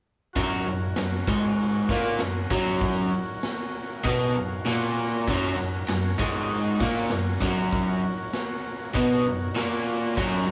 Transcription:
0.33 overdriven electric guitar F#2, transistor combo organ F#4 A#4 C#5, kick, open hi-hat
0.38 overdriven electric guitar F#3
0.68 overdriven electric guitar F#2
0.96 overdriven electric guitar F#2, snare, open hi-hat
1.27 overdriven electric guitar G#2 G#3, kick
1.58 open hi-hat
1.89 overdriven electric guitar A#2 A#3, kick
2.19 overdriven electric guitar F#2, snare, open hi-hat
2.51 overdriven electric guitar F#2 F#3, kick
2.81 kick, open hi-hat
3.43 snare, open hi-hat
4.04 overdriven electric guitar B2 B3, kick, open hi-hat
4.34 overdriven electric guitar F#2, transistor combo organ F5
4.65 overdriven electric guitar A#2 A#3, snare, open hi-hat
4.70 transistor combo organ F#5
4.85 transistor combo organ G#5
5.00 transistor combo organ A#5
5.28 overdriven electric guitar F#2 F#3, transistor combo organ F#4 A#4, kick, crash
5.32 transistor combo organ C#5
5.57 overdriven electric guitar F#2
5.89 overdriven electric guitar F#2, snare, open hi-hat
6.18 overdriven electric guitar G#2 G#3, kick
6.49 open hi-hat
6.80 overdriven electric guitar A#2 A#3, kick
7.10 overdriven electric guitar F#2, snare, open hi-hat
7.40 overdriven electric guitar F#2 F#3, kick
7.72 kick, open hi-hat
8.33 snare, open hi-hat
8.95 overdriven electric guitar B2 B3, kick, open hi-hat
9.26 overdriven electric guitar F#2
9.55 overdriven electric guitar A#2 A#3, snare, open hi-hat
10.17 overdriven electric guitar F#2 F#3, transistor combo organ F#4 A#4, kick, crash
10.21 transistor combo organ D#5
10.48 overdriven electric guitar F#2

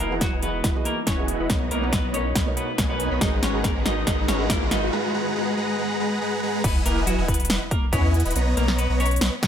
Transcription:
Already playing: ambient pad G#3 B3 D#4 E4, riser
0.00 sub bass E1, clean electric guitar A#3 A#4, supersaw synth E4 B4 D#5 F#5 G#5
0.10 felt piano E3 B3 F#4 G#4 F#5
0.21 clean electric guitar F#3 F#4, kick, snare, closed hi-hat
0.32 sub bass E1, supersaw synth E4 B4 D#5 F#5 G#5
0.42 felt piano E3 B3 F#4 G#4 D#5, clean electric guitar B3 B4, closed hi-hat
0.64 sub bass E1, supersaw synth E4 B4 D#5 F#5 B5, kick, snare, closed hi-hat
0.74 felt piano E3 B3 F#4 G#4 D#5
0.85 clean electric guitar A#3 A#4, closed hi-hat
1.07 sub bass E1, clean electric guitar C#4 C#5, supersaw synth E4 B4 D#5 F#5 G#5, kick, snare, closed hi-hat
1.17 felt piano E3 B3 F#4 G#4 D#5
1.28 closed hi-hat
1.40 sub bass E1, supersaw synth E4 B4 D#5 F#5 B5
1.49 sub bass B1, felt piano B2 B3 D#4 A#4 C#5, ambient pad A#3 F#4, supersaw synth B3, kick, snare, closed hi-hat
1.71 sub bass B1, clean electric guitar A#3 A#4, supersaw synth B3 B4 C#5 D#5 A#5, closed hi-hat
1.81 felt piano B2 B3 D#4 A#4 F#5
1.92 clean electric guitar B3 B4, kick, snare, closed hi-hat
2.04 sub bass B1, supersaw synth B3 B4 C#5 D#5 A#5
2.13 felt piano B2 B3 D#4 A#4 C#5, clean electric guitar C#4 C#5, closed hi-hat
2.35 sub bass B1, supersaw synth B3 B4 C#5 D#5 B5, kick, snare, closed hi-hat
2.46 felt piano B2 B3 D#4 A#4 C#5
2.57 clean electric guitar B3 B4, closed hi-hat
2.78 sub bass B1, supersaw synth B3 B4 C#5 D#5 G#5, kick, snare, closed hi-hat
2.89 felt piano B2 B3 D#4 A#4 C#5, clean electric guitar B3 B4
3.00 closed hi-hat
3.11 sub bass B1, supersaw synth B3 B4 C#5 D#5 B5
3.20 sub bass G#1, ambient pad D#3 G#3 F#4, felt piano G#3 D#4 F#4 A#4 B4, supersaw synth G#3 G#4 B4 A#5, clean electric guitar D#4 D#5, kick, snare, closed hi-hat
3.42 sub bass G#1, supersaw synth G#3 G#4 B4 F#5 A#5, clean electric guitar C#4 C#5, snare, closed hi-hat
3.53 felt piano G#3 D#4 F#4 A#4 B4
3.64 clean electric guitar A#3 A#4, kick, snare, closed hi-hat
3.75 sub bass G#1, supersaw synth G#3 G#4 B4 F#5 A#5
3.85 felt piano G#3 D#4 F#4 A#4 B4, clean electric guitar D#4 D#5, snare, closed hi-hat
4.06 sub bass G#1, felt piano G#3 D#4 F#4 A#4 B4, supersaw synth G#3 G#4 B4 F#5 A#5, clean electric guitar D#4 D#5, kick, snare, closed hi-hat
4.28 sub bass G#1, supersaw synth G#3 G#4 B4 F#5 A#5, clean electric guitar C#4 C#5, snare, closed hi-hat
4.38 felt piano G#3 D#4 F#4 A#4 B4
4.50 clean electric guitar A#3 A#4, kick, snare, closed hi-hat
4.61 sub bass G#1, supersaw synth G#3 G#4 B4 F#5 A#5
4.70 felt piano G#3 D#4 F#4 A#4 B4, clean electric guitar D#4 D#5, snare, closed hi-hat
4.93 supersaw synth G#3 G#4 B4 F#5 A#5
5.14 supersaw synth G#3 G#4 B4 F#5 A#5
5.36 supersaw synth G#3 G#4 B4 F#5 A#5
5.57 supersaw synth G#3 G#4 B4 F#5 A#5
5.78 supersaw synth G#3 G#4 B4 F#5 A#5
6.00 supersaw synth G#3 G#4 B4 F#5 A#5
6.21 supersaw synth G#3 G#4 B4 F#5 A#5
6.43 supersaw synth G#3 G#4 B4 F#5 A#5
6.64 sub bass E1, clean electric guitar B3 B4, supersaw synth E4 B4 D#5, kick, closed hi-hat, crash, sub drop
6.85 sub bass E1, clean electric guitar A#3 A#4, supersaw synth E4 B4 D#5 F#5 G#5, closed hi-hat
7.07 clean electric guitar F#3 F#4, closed hi-hat
7.18 sub bass E1, supersaw synth E4 B4 D#5 F#5 G#5
7.28 clean electric guitar B3 B4, kick, closed hi-hat
7.34 closed hi-hat
7.40 closed hi-hat
7.45 closed hi-hat
7.50 sub bass E1, supersaw synth E4 B4 D#5 F#5 B5, snare, closed hi-hat
7.71 clean electric guitar A#3 A#4, kick, closed hi-hat
7.93 sub bass E2, clean electric guitar C#4 C#5, supersaw synth E4 B4 D#5 F#5 G#5, kick, closed hi-hat
8.14 closed hi-hat
8.20 closed hi-hat
8.25 sub bass E1, supersaw synth E4 B4 D#5 F#5 B5, closed hi-hat
8.31 closed hi-hat
8.36 sub bass B1, supersaw synth B3 B4 C#5 D#5 A#5, closed hi-hat
8.57 sub bass B1, clean electric guitar A#3 A#4, supersaw synth B3 B4 C#5 D#5 A#5, closed hi-hat
8.68 snare
8.78 clean electric guitar B3 B4, closed hi-hat
8.90 sub bass B1, supersaw synth B3 B4 C#5 D#5 A#5
9.00 clean electric guitar C#4 C#5, closed hi-hat
9.06 closed hi-hat
9.11 closed hi-hat
9.16 closed hi-hat
9.21 sub bass B1, supersaw synth B3 B4 C#5 D#5 B5, snare, closed hi-hat
9.43 clean electric guitar B3 B4, kick, snare, closed hi-hat

